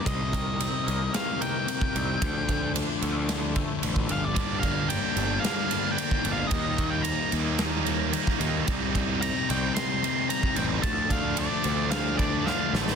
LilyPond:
<<
  \new Staff \with { instrumentName = "Lead electric guitar" } { \time 4/4 \key c \dorian \tempo 4 = 111 ees''2 f''8 g''4.~ | g''4 r2 r8 f''16 d''16~ | d''8 f''8 g''4 f''4 g''8. f''16 | ees''8. g''16 bes''8 r2 r8 |
r4 bes''8 g''8 c'''4 bes''8 g''8 | a''8 f''8 d''4 f''8 d''8 f''8 r8 | }
  \new Staff \with { instrumentName = "Distorted electric guitar" } { \time 4/4 \key c \dorian <c g c' ees'>8 <g c' ees'>8 <c g c' ees'>4 <c g c' ees'>8 <g c' ees'>8 <c g c' ees'>8 <g c' ees'>8 | <d f a d'>8 <f a d'>8 <d f a d'>4 <d f a d'>8 <f a d'>8 <d f a d'>8 <f a d'>8 | <g, d g bes d'>8 <g bes d'>8 <d g bes d'>4 <g, d g bes d'>8 <g bes d'>8 <d g bes d'>8 <g bes d'>8 | <ees g bes ees'>8 <g bes ees'>8 <ees g bes ees'>4 <ees g bes ees'>8 <g bes ees'>8 <ees g bes ees'>8 <g bes ees'>8 |
<c g c' ees'>8 <g c' ees'>8 <c g c' ees'>4 <c g c' ees'>8 <g c' ees'>8 <c g c' ees'>8 <g c' ees'>8 | <d f a d'>8 <f a d'>8 <d f a d'>4 <d f a d'>8 <f a d'>8 <d f a d'>8 <f a d'>8 | }
  \new Staff \with { instrumentName = "Distorted electric guitar" } { \time 4/4 \key c \dorian r1 | r1 | <g, d g bes d'>8 <g bes d'>8 <g, d g bes d'>8 <g bes d'>8 <d g bes d'>8 <g, d g bes d'>8 <d g bes d'>8 <g bes d'>8 | <ees g bes ees'>8 <g bes ees'>8 <ees g bes ees'>8 <g bes ees'>8 <ees g bes ees'>8 <ees g bes ees'>8 <ees g bes ees'>8 <g bes ees'>8 |
<c g c' ees'>8 <g c' ees'>8 <c g c' ees'>8 <g c' ees'>8 <c g c' ees'>8 <c g c' ees'>8 <c g c' ees'>8 <g c' ees'>8 | <d f a d'>8 <f a d'>8 <d f a d'>8 <f a d'>8 <d f a d'>8 <d f a d'>8 <d f a d'>8 <f a d'>8 | }
  \new Staff \with { instrumentName = "Clean electric guitar" } { \clef bass \time 4/4 \key c \dorian c8 ees8 c'8 bes8 ees8 bes8 ees8 c'8 | d8 d8 d'8 a8 d8 a8 d8 d'8 | r1 | r1 |
r1 | r1 | }
  \new Staff \with { instrumentName = "Picked electric bass" } { \clef bass \time 4/4 \key c \dorian c,4. c,8 r4. c,8 | d,4. d,4. a,,8 g,,8 | g,,4. g,,8 r4. g,,8 | ees,4. ees,2 ees,8 |
c,4. c,8 r4. a,,8 | d,4. d,2 a,,8 | }
  \new DrumStaff \with { instrumentName = "Drums" } \drummode { \time 4/4 <bd cymr>8 <bd cymr>8 cymr8 cymr8 <cymr sn>8 cymr8 cymr16 bd16 cymr8 | <bd cymr>8 <bd cymr>8 cymr8 cymr8 <cymr sn>8 <bd cymr>8 cymr16 bd16 cymr8 | <bd cymr>8 <bd cymr>8 cymr8 cymr8 <cymr sn>8 cymr8 cymr16 bd16 cymr8 | <bd cymr>8 <bd cymr>8 cymr8 cymr8 <cymr sn>8 cymr8 cymr16 <bd sn>16 cymr8 |
<bd cymr>8 <bd cymr>8 cymr8 cymr8 <cymr sn>8 cymr8 cymr16 bd16 cymr8 | <bd cymr>8 <bd cymr>8 cymr8 cymr8 <cymr sn>8 <bd cymr>8 sn8 sn16 sn16 | }
>>